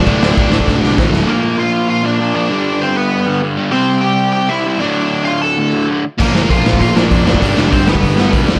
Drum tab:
CC |----------------|----------------|----------------|----------------|
RD |x---x-----------|----------------|----------------|----------------|
HH |----------------|----------------|----------------|----------------|
SD |--o---o-o-o-o-o-|----------------|----------------|----------------|
BD |o---o--oo---o---|----------------|----------------|----------------|

CC |----------------|x---------------|----------------|
RD |----------------|----------------|----------------|
HH |----------------|----o---o---o---|o---o---o---o---|
SD |----------------|--o---o---o---o-|--o---o---o---o-|
BD |----------------|o---o--oo---o--o|o---o--oo---o--o|